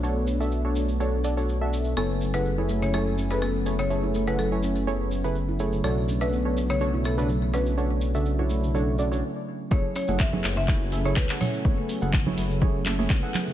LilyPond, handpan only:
\new Staff \with { instrumentName = "Handpan" } { \time 4/4 \key fis \minor \tempo 4 = 124 r1 | b16 r8 cis16 r16 e'16 a16 cis16 fis16 r16 cis'16 r16 b16 r8 cis16 | r16 e'16 a16 cis16 fis16 r16 cis'16 r16 b16 r8 cis16 r16 e'16 a16 cis16 | fis16 r16 cis'16 r16 b16 r8 cis16 r16 e'16 a16 cis16 fis16 r16 cis'16 r16 |
b16 r8 cis16 r16 e'16 a16 cis16 fis16 r16 cis'16 r4 r16 | fis16 r16 cis'16 r16 b16 r8 cis16 r16 e'16 a16 cis16 r8 cis'16 r16 | r8. cis16 r16 e'16 a16 cis16 fis16 r16 cis'16 r4 cis16 | }